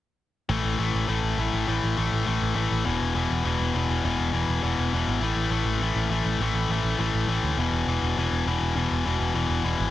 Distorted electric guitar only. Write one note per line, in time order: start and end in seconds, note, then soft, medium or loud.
0.49 0.79 A2 medium
0.49 0.79 E3 loud
0.49 0.78 A3 loud
0.78 1.07 A2 medium
0.78 1.08 E3 medium
0.78 1.08 A3 medium
1.08 1.39 A2 loud
1.08 1.39 E3 loud
1.08 1.37 A3 loud
1.39 1.66 A2 medium
1.39 1.67 E3 medium
1.39 1.67 A3 medium
1.67 1.97 A2 loud
1.67 1.97 E3 loud
1.67 1.96 A3 loud
1.97 2.25 A2 medium
1.97 2.26 E3 medium
1.97 2.26 A3 medium
2.26 2.55 A2 loud
2.26 2.55 E3 loud
2.26 2.54 A3 loud
2.56 2.84 A2 medium
2.56 2.85 E3 medium
2.56 2.85 A3 medium
2.84 3.15 E2 loud
2.84 3.15 B2 loud
2.84 3.15 E3 loud
3.15 3.43 E2 medium
3.15 3.44 B2 medium
3.15 3.45 E3 medium
3.44 3.74 E2 medium
3.44 3.74 B2 loud
3.44 3.74 E3 loud
3.74 4.02 E2 medium
3.74 4.03 B2 medium
3.74 4.04 E3 medium
4.04 4.33 E2 medium
4.04 4.32 B2 loud
4.04 4.33 E3 loud
4.33 4.61 E2 medium
4.33 4.61 B2 medium
4.33 4.63 E3 medium
4.62 4.93 E2 medium
4.62 4.93 B2 loud
4.62 4.93 E3 loud
4.93 5.22 E2 medium
4.93 5.22 B2 medium
4.93 5.23 E3 medium
5.22 5.52 A2 medium
5.22 5.52 E3 loud
5.22 5.51 A3 loud
5.51 5.81 A2 medium
5.51 5.83 E3 medium
5.51 5.82 A3 medium
5.82 6.10 A2 loud
5.82 6.11 E3 loud
5.82 6.09 A3 loud
6.11 6.41 A2 medium
6.11 6.42 E3 medium
6.11 6.41 A3 medium
6.42 6.71 A2 loud
6.42 6.72 E3 medium
6.42 6.70 A3 loud
6.71 6.98 A2 medium
6.71 7.00 E3 medium
6.71 6.99 A3 medium
6.99 7.29 A2 medium
6.99 7.29 E3 loud
6.99 7.27 A3 loud
7.28 7.58 A2 medium
7.28 7.59 E3 medium
7.28 7.57 A3 medium
7.58 7.89 E2 medium
7.58 7.88 B2 loud
7.58 7.87 E3 loud
7.88 8.16 E2 medium
7.88 8.17 B2 medium
7.88 8.18 E3 medium
8.17 8.47 E2 medium
8.17 8.46 B2 loud
8.17 8.47 E3 loud
8.47 8.75 E2 medium
8.47 8.75 B2 medium
8.47 8.77 E3 medium
8.76 9.05 E2 medium
8.76 9.05 B2 loud
8.76 9.05 E3 loud
9.06 9.33 E2 medium
9.06 9.33 B2 medium
9.06 9.35 E3 medium
9.34 9.64 E2 loud
9.34 9.63 B2 medium
9.34 9.64 E3 loud
9.64 9.90 E2 medium
9.64 9.90 B2 medium
9.64 9.90 E3 medium